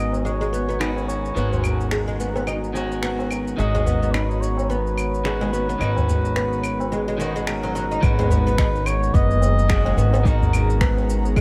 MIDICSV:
0, 0, Header, 1, 8, 480
1, 0, Start_track
1, 0, Key_signature, 5, "minor"
1, 0, Tempo, 555556
1, 1177, Time_signature, 4, 2, 24, 8
1, 9857, End_track
2, 0, Start_track
2, 0, Title_t, "Analog synth pad"
2, 0, Program_c, 0, 89
2, 0, Note_on_c, 0, 59, 71
2, 0, Note_on_c, 0, 66, 79
2, 0, Note_on_c, 0, 80, 90
2, 0, Note_on_c, 0, 82, 64
2, 3092, Note_off_c, 0, 80, 0
2, 3094, Note_on_c, 0, 73, 84
2, 6901, Note_off_c, 0, 66, 0
2, 6902, Note_off_c, 0, 59, 0
2, 6902, Note_off_c, 0, 82, 0
2, 6928, Note_off_c, 0, 73, 0
2, 6931, Note_on_c, 0, 68, 83
2, 6931, Note_on_c, 0, 82, 89
2, 6932, Note_on_c, 0, 59, 78
2, 6932, Note_on_c, 0, 78, 74
2, 9857, Note_off_c, 0, 59, 0
2, 9857, Note_off_c, 0, 68, 0
2, 9857, Note_off_c, 0, 78, 0
2, 9857, Note_off_c, 0, 82, 0
2, 9857, End_track
3, 0, Start_track
3, 0, Title_t, "Muted trumpet"
3, 0, Program_c, 1, 59
3, 0, Note_on_c, 1, 75, 91
3, 163, Note_off_c, 1, 75, 0
3, 163, Note_on_c, 1, 75, 62
3, 219, Note_on_c, 1, 73, 101
3, 232, Note_off_c, 1, 75, 0
3, 696, Note_on_c, 1, 71, 84
3, 709, Note_off_c, 1, 73, 0
3, 927, Note_off_c, 1, 71, 0
3, 932, Note_on_c, 1, 73, 78
3, 1620, Note_off_c, 1, 73, 0
3, 3098, Note_on_c, 1, 75, 114
3, 3572, Note_on_c, 1, 71, 96
3, 3585, Note_off_c, 1, 75, 0
3, 3813, Note_on_c, 1, 73, 85
3, 3826, Note_off_c, 1, 71, 0
3, 4055, Note_on_c, 1, 71, 112
3, 4068, Note_off_c, 1, 73, 0
3, 6456, Note_off_c, 1, 71, 0
3, 6466, Note_on_c, 1, 70, 87
3, 6939, Note_on_c, 1, 71, 111
3, 6952, Note_off_c, 1, 70, 0
3, 7662, Note_on_c, 1, 73, 103
3, 7675, Note_off_c, 1, 71, 0
3, 7898, Note_on_c, 1, 75, 127
3, 7911, Note_off_c, 1, 73, 0
3, 8610, Note_off_c, 1, 75, 0
3, 8616, Note_on_c, 1, 75, 96
3, 8868, Note_on_c, 1, 70, 92
3, 8881, Note_off_c, 1, 75, 0
3, 9583, Note_off_c, 1, 70, 0
3, 9857, End_track
4, 0, Start_track
4, 0, Title_t, "Oud"
4, 0, Program_c, 2, 24
4, 0, Note_on_c, 2, 59, 77
4, 206, Note_off_c, 2, 59, 0
4, 215, Note_on_c, 2, 56, 71
4, 340, Note_off_c, 2, 56, 0
4, 354, Note_on_c, 2, 56, 84
4, 451, Note_off_c, 2, 56, 0
4, 456, Note_on_c, 2, 59, 67
4, 582, Note_off_c, 2, 59, 0
4, 593, Note_on_c, 2, 59, 71
4, 691, Note_off_c, 2, 59, 0
4, 694, Note_on_c, 2, 63, 75
4, 774, Note_off_c, 2, 63, 0
4, 1176, Note_on_c, 2, 59, 67
4, 1646, Note_off_c, 2, 59, 0
4, 1656, Note_on_c, 2, 56, 80
4, 1780, Note_off_c, 2, 56, 0
4, 1794, Note_on_c, 2, 56, 85
4, 1891, Note_off_c, 2, 56, 0
4, 1899, Note_on_c, 2, 59, 67
4, 2025, Note_off_c, 2, 59, 0
4, 2035, Note_on_c, 2, 59, 64
4, 2132, Note_off_c, 2, 59, 0
4, 2136, Note_on_c, 2, 63, 77
4, 2215, Note_off_c, 2, 63, 0
4, 2616, Note_on_c, 2, 59, 75
4, 3086, Note_off_c, 2, 59, 0
4, 3098, Note_on_c, 2, 56, 77
4, 3221, Note_off_c, 2, 56, 0
4, 3237, Note_on_c, 2, 56, 86
4, 3333, Note_off_c, 2, 56, 0
4, 3337, Note_on_c, 2, 59, 62
4, 3466, Note_off_c, 2, 59, 0
4, 3476, Note_on_c, 2, 59, 65
4, 3572, Note_off_c, 2, 59, 0
4, 3577, Note_on_c, 2, 63, 82
4, 3656, Note_off_c, 2, 63, 0
4, 4058, Note_on_c, 2, 59, 76
4, 4527, Note_off_c, 2, 59, 0
4, 4538, Note_on_c, 2, 56, 74
4, 4661, Note_off_c, 2, 56, 0
4, 4676, Note_on_c, 2, 56, 95
4, 4772, Note_off_c, 2, 56, 0
4, 4779, Note_on_c, 2, 59, 60
4, 4907, Note_off_c, 2, 59, 0
4, 4917, Note_on_c, 2, 59, 69
4, 5013, Note_off_c, 2, 59, 0
4, 5019, Note_on_c, 2, 63, 72
4, 5097, Note_off_c, 2, 63, 0
4, 5497, Note_on_c, 2, 59, 81
4, 5967, Note_off_c, 2, 59, 0
4, 5978, Note_on_c, 2, 56, 81
4, 6102, Note_off_c, 2, 56, 0
4, 6116, Note_on_c, 2, 56, 91
4, 6213, Note_off_c, 2, 56, 0
4, 6218, Note_on_c, 2, 51, 89
4, 6341, Note_off_c, 2, 51, 0
4, 6357, Note_on_c, 2, 56, 92
4, 6448, Note_off_c, 2, 56, 0
4, 6456, Note_on_c, 2, 56, 78
4, 6535, Note_off_c, 2, 56, 0
4, 6595, Note_on_c, 2, 54, 88
4, 6686, Note_off_c, 2, 54, 0
4, 6697, Note_on_c, 2, 54, 79
4, 6775, Note_off_c, 2, 54, 0
4, 6837, Note_on_c, 2, 63, 71
4, 6933, Note_off_c, 2, 63, 0
4, 6937, Note_on_c, 2, 56, 78
4, 7061, Note_off_c, 2, 56, 0
4, 7074, Note_on_c, 2, 56, 103
4, 7171, Note_off_c, 2, 56, 0
4, 7177, Note_on_c, 2, 59, 68
4, 7305, Note_off_c, 2, 59, 0
4, 7316, Note_on_c, 2, 59, 79
4, 7412, Note_off_c, 2, 59, 0
4, 7419, Note_on_c, 2, 63, 91
4, 7497, Note_off_c, 2, 63, 0
4, 7901, Note_on_c, 2, 59, 83
4, 8369, Note_off_c, 2, 59, 0
4, 8381, Note_on_c, 2, 56, 89
4, 8503, Note_off_c, 2, 56, 0
4, 8519, Note_on_c, 2, 56, 96
4, 8614, Note_off_c, 2, 56, 0
4, 8620, Note_on_c, 2, 59, 73
4, 8747, Note_off_c, 2, 59, 0
4, 8757, Note_on_c, 2, 59, 79
4, 8853, Note_off_c, 2, 59, 0
4, 8859, Note_on_c, 2, 63, 76
4, 8937, Note_off_c, 2, 63, 0
4, 9338, Note_on_c, 2, 59, 88
4, 9807, Note_off_c, 2, 59, 0
4, 9820, Note_on_c, 2, 56, 83
4, 9857, Note_off_c, 2, 56, 0
4, 9857, End_track
5, 0, Start_track
5, 0, Title_t, "Clean electric guitar"
5, 0, Program_c, 3, 27
5, 0, Note_on_c, 3, 51, 78
5, 0, Note_on_c, 3, 56, 69
5, 0, Note_on_c, 3, 61, 70
5, 0, Note_on_c, 3, 66, 87
5, 664, Note_off_c, 3, 51, 0
5, 670, Note_off_c, 3, 56, 0
5, 676, Note_off_c, 3, 61, 0
5, 681, Note_off_c, 3, 66, 0
5, 690, Note_on_c, 3, 51, 68
5, 695, Note_on_c, 3, 56, 61
5, 701, Note_on_c, 3, 61, 62
5, 707, Note_on_c, 3, 66, 75
5, 1149, Note_off_c, 3, 51, 0
5, 1152, Note_off_c, 3, 56, 0
5, 1155, Note_off_c, 3, 61, 0
5, 1158, Note_off_c, 3, 66, 0
5, 1164, Note_on_c, 3, 51, 80
5, 1176, Note_on_c, 3, 56, 75
5, 1186, Note_on_c, 3, 61, 72
5, 1199, Note_on_c, 3, 66, 86
5, 2346, Note_off_c, 3, 51, 0
5, 2352, Note_off_c, 3, 56, 0
5, 2357, Note_off_c, 3, 61, 0
5, 2360, Note_on_c, 3, 51, 70
5, 2364, Note_off_c, 3, 66, 0
5, 2373, Note_on_c, 3, 56, 63
5, 2384, Note_on_c, 3, 61, 64
5, 2394, Note_on_c, 3, 66, 76
5, 3064, Note_off_c, 3, 51, 0
5, 3071, Note_off_c, 3, 56, 0
5, 3076, Note_off_c, 3, 61, 0
5, 3081, Note_off_c, 3, 66, 0
5, 3081, Note_on_c, 3, 51, 79
5, 3092, Note_on_c, 3, 56, 72
5, 3104, Note_on_c, 3, 61, 72
5, 3116, Note_on_c, 3, 66, 84
5, 4504, Note_off_c, 3, 51, 0
5, 4510, Note_off_c, 3, 56, 0
5, 4516, Note_off_c, 3, 61, 0
5, 4522, Note_off_c, 3, 66, 0
5, 4529, Note_on_c, 3, 51, 65
5, 4536, Note_on_c, 3, 56, 60
5, 4541, Note_on_c, 3, 61, 65
5, 4548, Note_on_c, 3, 66, 75
5, 4988, Note_off_c, 3, 51, 0
5, 4992, Note_off_c, 3, 56, 0
5, 4994, Note_off_c, 3, 61, 0
5, 4998, Note_off_c, 3, 66, 0
5, 4999, Note_on_c, 3, 51, 82
5, 5011, Note_on_c, 3, 56, 75
5, 5022, Note_on_c, 3, 61, 77
5, 5033, Note_on_c, 3, 66, 83
5, 6183, Note_off_c, 3, 51, 0
5, 6189, Note_off_c, 3, 56, 0
5, 6195, Note_off_c, 3, 61, 0
5, 6199, Note_on_c, 3, 51, 67
5, 6200, Note_off_c, 3, 66, 0
5, 6211, Note_on_c, 3, 56, 66
5, 6222, Note_on_c, 3, 61, 62
5, 6234, Note_on_c, 3, 66, 81
5, 6903, Note_off_c, 3, 51, 0
5, 6909, Note_off_c, 3, 56, 0
5, 6915, Note_off_c, 3, 61, 0
5, 6920, Note_on_c, 3, 51, 92
5, 6921, Note_off_c, 3, 66, 0
5, 6932, Note_on_c, 3, 56, 78
5, 6944, Note_on_c, 3, 61, 83
5, 6955, Note_on_c, 3, 66, 100
5, 8344, Note_off_c, 3, 51, 0
5, 8350, Note_off_c, 3, 56, 0
5, 8356, Note_off_c, 3, 61, 0
5, 8361, Note_off_c, 3, 66, 0
5, 8371, Note_on_c, 3, 51, 73
5, 8376, Note_on_c, 3, 56, 67
5, 8382, Note_on_c, 3, 61, 71
5, 8388, Note_on_c, 3, 66, 85
5, 8829, Note_off_c, 3, 51, 0
5, 8832, Note_off_c, 3, 56, 0
5, 8835, Note_off_c, 3, 61, 0
5, 8838, Note_off_c, 3, 66, 0
5, 8843, Note_on_c, 3, 51, 87
5, 8854, Note_on_c, 3, 56, 78
5, 8864, Note_on_c, 3, 61, 80
5, 8877, Note_on_c, 3, 66, 99
5, 9857, Note_off_c, 3, 51, 0
5, 9857, Note_off_c, 3, 56, 0
5, 9857, Note_off_c, 3, 61, 0
5, 9857, Note_off_c, 3, 66, 0
5, 9857, End_track
6, 0, Start_track
6, 0, Title_t, "Upright bass"
6, 0, Program_c, 4, 32
6, 0, Note_on_c, 4, 32, 81
6, 1155, Note_off_c, 4, 32, 0
6, 1175, Note_on_c, 4, 32, 78
6, 3076, Note_off_c, 4, 32, 0
6, 3097, Note_on_c, 4, 32, 80
6, 4997, Note_off_c, 4, 32, 0
6, 5015, Note_on_c, 4, 32, 82
6, 6916, Note_off_c, 4, 32, 0
6, 6935, Note_on_c, 4, 32, 99
6, 7855, Note_off_c, 4, 32, 0
6, 7897, Note_on_c, 4, 30, 97
6, 8576, Note_off_c, 4, 30, 0
6, 8613, Note_on_c, 4, 32, 94
6, 9857, Note_off_c, 4, 32, 0
6, 9857, End_track
7, 0, Start_track
7, 0, Title_t, "Tabla"
7, 109, Note_on_c, 9, 60, 68
7, 195, Note_off_c, 9, 60, 0
7, 828, Note_on_c, 9, 63, 47
7, 832, Note_on_c, 9, 60, 47
7, 914, Note_off_c, 9, 63, 0
7, 918, Note_off_c, 9, 60, 0
7, 1074, Note_on_c, 9, 63, 39
7, 1161, Note_off_c, 9, 63, 0
7, 1313, Note_on_c, 9, 60, 58
7, 1316, Note_on_c, 9, 64, 86
7, 1400, Note_off_c, 9, 60, 0
7, 1403, Note_off_c, 9, 64, 0
7, 1414, Note_on_c, 9, 64, 76
7, 1501, Note_off_c, 9, 64, 0
7, 2035, Note_on_c, 9, 60, 64
7, 2036, Note_on_c, 9, 63, 46
7, 2121, Note_off_c, 9, 60, 0
7, 2123, Note_off_c, 9, 63, 0
7, 2374, Note_on_c, 9, 60, 53
7, 2461, Note_off_c, 9, 60, 0
7, 2755, Note_on_c, 9, 60, 54
7, 2842, Note_off_c, 9, 60, 0
7, 2987, Note_on_c, 9, 60, 29
7, 3073, Note_off_c, 9, 60, 0
7, 3237, Note_on_c, 9, 64, 73
7, 3238, Note_on_c, 9, 60, 56
7, 3324, Note_off_c, 9, 64, 0
7, 3325, Note_off_c, 9, 60, 0
7, 3334, Note_on_c, 9, 64, 71
7, 3421, Note_off_c, 9, 64, 0
7, 3952, Note_on_c, 9, 60, 64
7, 4038, Note_off_c, 9, 60, 0
7, 4672, Note_on_c, 9, 60, 51
7, 4674, Note_on_c, 9, 63, 54
7, 4759, Note_off_c, 9, 60, 0
7, 4761, Note_off_c, 9, 63, 0
7, 4917, Note_on_c, 9, 63, 45
7, 5003, Note_off_c, 9, 63, 0
7, 5152, Note_on_c, 9, 60, 59
7, 5163, Note_on_c, 9, 64, 75
7, 5238, Note_off_c, 9, 60, 0
7, 5249, Note_off_c, 9, 64, 0
7, 5261, Note_on_c, 9, 64, 81
7, 5348, Note_off_c, 9, 64, 0
7, 5873, Note_on_c, 9, 63, 45
7, 5877, Note_on_c, 9, 60, 76
7, 5959, Note_off_c, 9, 63, 0
7, 5963, Note_off_c, 9, 60, 0
7, 6216, Note_on_c, 9, 60, 54
7, 6302, Note_off_c, 9, 60, 0
7, 6600, Note_on_c, 9, 60, 52
7, 6687, Note_off_c, 9, 60, 0
7, 6687, Note_on_c, 9, 63, 41
7, 6774, Note_off_c, 9, 63, 0
7, 6840, Note_on_c, 9, 60, 29
7, 6926, Note_off_c, 9, 60, 0
7, 7072, Note_on_c, 9, 64, 90
7, 7079, Note_on_c, 9, 60, 60
7, 7158, Note_off_c, 9, 64, 0
7, 7165, Note_off_c, 9, 60, 0
7, 7171, Note_on_c, 9, 64, 85
7, 7257, Note_off_c, 9, 64, 0
7, 7550, Note_on_c, 9, 60, 38
7, 7636, Note_off_c, 9, 60, 0
7, 8133, Note_on_c, 9, 60, 58
7, 8219, Note_off_c, 9, 60, 0
7, 8512, Note_on_c, 9, 60, 73
7, 8512, Note_on_c, 9, 63, 62
7, 8598, Note_off_c, 9, 60, 0
7, 8598, Note_off_c, 9, 63, 0
7, 8751, Note_on_c, 9, 60, 77
7, 8756, Note_on_c, 9, 63, 51
7, 8838, Note_off_c, 9, 60, 0
7, 8842, Note_off_c, 9, 63, 0
7, 8999, Note_on_c, 9, 64, 93
7, 9086, Note_off_c, 9, 64, 0
7, 9096, Note_on_c, 9, 64, 101
7, 9182, Note_off_c, 9, 64, 0
7, 9480, Note_on_c, 9, 60, 44
7, 9566, Note_off_c, 9, 60, 0
7, 9710, Note_on_c, 9, 63, 57
7, 9797, Note_off_c, 9, 63, 0
7, 9812, Note_on_c, 9, 60, 40
7, 9857, Note_off_c, 9, 60, 0
7, 9857, End_track
8, 0, Start_track
8, 0, Title_t, "Drums"
8, 124, Note_on_c, 9, 82, 30
8, 210, Note_off_c, 9, 82, 0
8, 225, Note_on_c, 9, 82, 42
8, 311, Note_off_c, 9, 82, 0
8, 364, Note_on_c, 9, 82, 21
8, 450, Note_off_c, 9, 82, 0
8, 465, Note_on_c, 9, 82, 67
8, 551, Note_off_c, 9, 82, 0
8, 604, Note_on_c, 9, 82, 28
8, 690, Note_off_c, 9, 82, 0
8, 699, Note_on_c, 9, 26, 86
8, 699, Note_on_c, 9, 75, 66
8, 707, Note_on_c, 9, 82, 38
8, 785, Note_off_c, 9, 26, 0
8, 785, Note_off_c, 9, 75, 0
8, 793, Note_off_c, 9, 82, 0
8, 844, Note_on_c, 9, 82, 19
8, 931, Note_off_c, 9, 82, 0
8, 945, Note_on_c, 9, 82, 68
8, 1031, Note_off_c, 9, 82, 0
8, 1082, Note_on_c, 9, 82, 29
8, 1169, Note_off_c, 9, 82, 0
8, 1183, Note_on_c, 9, 82, 37
8, 1270, Note_off_c, 9, 82, 0
8, 1321, Note_on_c, 9, 82, 19
8, 1408, Note_off_c, 9, 82, 0
8, 1415, Note_on_c, 9, 75, 66
8, 1423, Note_on_c, 9, 82, 69
8, 1501, Note_off_c, 9, 75, 0
8, 1509, Note_off_c, 9, 82, 0
8, 1560, Note_on_c, 9, 82, 28
8, 1647, Note_off_c, 9, 82, 0
8, 1653, Note_on_c, 9, 26, 85
8, 1661, Note_on_c, 9, 82, 40
8, 1739, Note_off_c, 9, 26, 0
8, 1748, Note_off_c, 9, 82, 0
8, 1800, Note_on_c, 9, 82, 19
8, 1887, Note_off_c, 9, 82, 0
8, 1902, Note_on_c, 9, 82, 68
8, 1989, Note_off_c, 9, 82, 0
8, 2041, Note_on_c, 9, 82, 28
8, 2128, Note_off_c, 9, 82, 0
8, 2134, Note_on_c, 9, 75, 71
8, 2142, Note_on_c, 9, 82, 37
8, 2220, Note_off_c, 9, 75, 0
8, 2229, Note_off_c, 9, 82, 0
8, 2281, Note_on_c, 9, 82, 20
8, 2368, Note_off_c, 9, 82, 0
8, 2382, Note_on_c, 9, 82, 63
8, 2469, Note_off_c, 9, 82, 0
8, 2521, Note_on_c, 9, 82, 27
8, 2608, Note_off_c, 9, 82, 0
8, 2615, Note_on_c, 9, 26, 79
8, 2623, Note_on_c, 9, 82, 38
8, 2701, Note_off_c, 9, 26, 0
8, 2710, Note_off_c, 9, 82, 0
8, 2762, Note_on_c, 9, 82, 19
8, 2849, Note_off_c, 9, 82, 0
8, 2856, Note_on_c, 9, 75, 68
8, 2864, Note_on_c, 9, 82, 68
8, 2942, Note_off_c, 9, 75, 0
8, 2951, Note_off_c, 9, 82, 0
8, 3002, Note_on_c, 9, 82, 29
8, 3089, Note_off_c, 9, 82, 0
8, 3105, Note_on_c, 9, 82, 38
8, 3191, Note_off_c, 9, 82, 0
8, 3244, Note_on_c, 9, 82, 19
8, 3331, Note_off_c, 9, 82, 0
8, 3345, Note_on_c, 9, 82, 62
8, 3432, Note_off_c, 9, 82, 0
8, 3484, Note_on_c, 9, 82, 29
8, 3571, Note_off_c, 9, 82, 0
8, 3579, Note_on_c, 9, 26, 85
8, 3579, Note_on_c, 9, 75, 69
8, 3587, Note_on_c, 9, 82, 37
8, 3665, Note_off_c, 9, 26, 0
8, 3665, Note_off_c, 9, 75, 0
8, 3674, Note_off_c, 9, 82, 0
8, 3725, Note_on_c, 9, 82, 19
8, 3811, Note_off_c, 9, 82, 0
8, 3827, Note_on_c, 9, 82, 71
8, 3914, Note_off_c, 9, 82, 0
8, 3966, Note_on_c, 9, 82, 28
8, 4052, Note_off_c, 9, 82, 0
8, 4067, Note_on_c, 9, 82, 39
8, 4154, Note_off_c, 9, 82, 0
8, 4206, Note_on_c, 9, 82, 20
8, 4292, Note_off_c, 9, 82, 0
8, 4299, Note_on_c, 9, 75, 73
8, 4307, Note_on_c, 9, 82, 64
8, 4385, Note_off_c, 9, 75, 0
8, 4393, Note_off_c, 9, 82, 0
8, 4444, Note_on_c, 9, 82, 29
8, 4530, Note_off_c, 9, 82, 0
8, 4536, Note_on_c, 9, 26, 82
8, 4545, Note_on_c, 9, 82, 35
8, 4623, Note_off_c, 9, 26, 0
8, 4631, Note_off_c, 9, 82, 0
8, 4681, Note_on_c, 9, 82, 19
8, 4768, Note_off_c, 9, 82, 0
8, 4784, Note_on_c, 9, 82, 70
8, 4870, Note_off_c, 9, 82, 0
8, 4923, Note_on_c, 9, 82, 28
8, 5009, Note_off_c, 9, 82, 0
8, 5017, Note_on_c, 9, 75, 72
8, 5026, Note_on_c, 9, 82, 39
8, 5104, Note_off_c, 9, 75, 0
8, 5112, Note_off_c, 9, 82, 0
8, 5162, Note_on_c, 9, 82, 21
8, 5248, Note_off_c, 9, 82, 0
8, 5263, Note_on_c, 9, 82, 72
8, 5350, Note_off_c, 9, 82, 0
8, 5401, Note_on_c, 9, 82, 29
8, 5487, Note_off_c, 9, 82, 0
8, 5496, Note_on_c, 9, 26, 86
8, 5504, Note_on_c, 9, 82, 36
8, 5582, Note_off_c, 9, 26, 0
8, 5590, Note_off_c, 9, 82, 0
8, 5641, Note_on_c, 9, 82, 19
8, 5727, Note_off_c, 9, 82, 0
8, 5733, Note_on_c, 9, 75, 77
8, 5741, Note_on_c, 9, 82, 68
8, 5819, Note_off_c, 9, 75, 0
8, 5827, Note_off_c, 9, 82, 0
8, 5881, Note_on_c, 9, 82, 30
8, 5967, Note_off_c, 9, 82, 0
8, 5982, Note_on_c, 9, 82, 41
8, 6069, Note_off_c, 9, 82, 0
8, 6121, Note_on_c, 9, 82, 18
8, 6207, Note_off_c, 9, 82, 0
8, 6225, Note_on_c, 9, 82, 71
8, 6311, Note_off_c, 9, 82, 0
8, 6363, Note_on_c, 9, 82, 29
8, 6449, Note_off_c, 9, 82, 0
8, 6456, Note_on_c, 9, 26, 93
8, 6456, Note_on_c, 9, 75, 69
8, 6464, Note_on_c, 9, 82, 38
8, 6542, Note_off_c, 9, 26, 0
8, 6542, Note_off_c, 9, 75, 0
8, 6551, Note_off_c, 9, 82, 0
8, 6601, Note_on_c, 9, 82, 18
8, 6688, Note_off_c, 9, 82, 0
8, 6704, Note_on_c, 9, 82, 71
8, 6790, Note_off_c, 9, 82, 0
8, 6841, Note_on_c, 9, 82, 29
8, 6927, Note_off_c, 9, 82, 0
8, 6935, Note_on_c, 9, 75, 82
8, 6936, Note_on_c, 9, 36, 99
8, 6943, Note_on_c, 9, 82, 46
8, 7021, Note_off_c, 9, 75, 0
8, 7022, Note_off_c, 9, 36, 0
8, 7029, Note_off_c, 9, 82, 0
8, 7083, Note_on_c, 9, 82, 23
8, 7169, Note_off_c, 9, 82, 0
8, 7184, Note_on_c, 9, 82, 79
8, 7271, Note_off_c, 9, 82, 0
8, 7322, Note_on_c, 9, 82, 33
8, 7409, Note_off_c, 9, 82, 0
8, 7416, Note_on_c, 9, 26, 99
8, 7417, Note_on_c, 9, 36, 111
8, 7425, Note_on_c, 9, 82, 46
8, 7503, Note_off_c, 9, 26, 0
8, 7503, Note_off_c, 9, 36, 0
8, 7511, Note_off_c, 9, 82, 0
8, 7563, Note_on_c, 9, 82, 22
8, 7650, Note_off_c, 9, 82, 0
8, 7656, Note_on_c, 9, 75, 85
8, 7665, Note_on_c, 9, 82, 83
8, 7743, Note_off_c, 9, 75, 0
8, 7751, Note_off_c, 9, 82, 0
8, 7803, Note_on_c, 9, 82, 33
8, 7890, Note_off_c, 9, 82, 0
8, 7897, Note_on_c, 9, 36, 103
8, 7906, Note_on_c, 9, 82, 46
8, 7983, Note_off_c, 9, 36, 0
8, 7992, Note_off_c, 9, 82, 0
8, 8043, Note_on_c, 9, 82, 22
8, 8129, Note_off_c, 9, 82, 0
8, 8145, Note_on_c, 9, 82, 79
8, 8231, Note_off_c, 9, 82, 0
8, 8284, Note_on_c, 9, 82, 33
8, 8370, Note_off_c, 9, 82, 0
8, 8377, Note_on_c, 9, 26, 98
8, 8377, Note_on_c, 9, 75, 78
8, 8378, Note_on_c, 9, 36, 106
8, 8385, Note_on_c, 9, 82, 40
8, 8463, Note_off_c, 9, 26, 0
8, 8463, Note_off_c, 9, 75, 0
8, 8464, Note_off_c, 9, 36, 0
8, 8472, Note_off_c, 9, 82, 0
8, 8523, Note_on_c, 9, 82, 22
8, 8609, Note_off_c, 9, 82, 0
8, 8626, Note_on_c, 9, 82, 76
8, 8713, Note_off_c, 9, 82, 0
8, 8765, Note_on_c, 9, 82, 33
8, 8851, Note_off_c, 9, 82, 0
8, 8858, Note_on_c, 9, 36, 105
8, 8868, Note_on_c, 9, 82, 46
8, 8944, Note_off_c, 9, 36, 0
8, 8955, Note_off_c, 9, 82, 0
8, 9007, Note_on_c, 9, 82, 24
8, 9094, Note_off_c, 9, 82, 0
8, 9101, Note_on_c, 9, 75, 80
8, 9109, Note_on_c, 9, 82, 80
8, 9187, Note_off_c, 9, 75, 0
8, 9196, Note_off_c, 9, 82, 0
8, 9245, Note_on_c, 9, 82, 33
8, 9332, Note_off_c, 9, 82, 0
8, 9338, Note_on_c, 9, 36, 120
8, 9339, Note_on_c, 9, 26, 102
8, 9348, Note_on_c, 9, 82, 44
8, 9425, Note_off_c, 9, 36, 0
8, 9426, Note_off_c, 9, 26, 0
8, 9434, Note_off_c, 9, 82, 0
8, 9485, Note_on_c, 9, 82, 23
8, 9571, Note_off_c, 9, 82, 0
8, 9587, Note_on_c, 9, 82, 78
8, 9673, Note_off_c, 9, 82, 0
8, 9725, Note_on_c, 9, 82, 35
8, 9812, Note_off_c, 9, 82, 0
8, 9818, Note_on_c, 9, 36, 102
8, 9818, Note_on_c, 9, 75, 84
8, 9826, Note_on_c, 9, 82, 46
8, 9857, Note_off_c, 9, 36, 0
8, 9857, Note_off_c, 9, 75, 0
8, 9857, Note_off_c, 9, 82, 0
8, 9857, End_track
0, 0, End_of_file